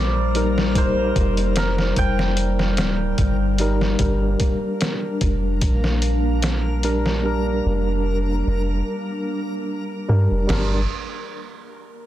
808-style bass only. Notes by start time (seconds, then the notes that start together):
Already playing: A#1
1.16 F1
1.97 F1
2.79 D1
3.19 G1
4.00 G1
5.22 F1
5.62 A#1
7.66 F1
8.47 F1
10.09 G2
10.31 F1
10.49 G1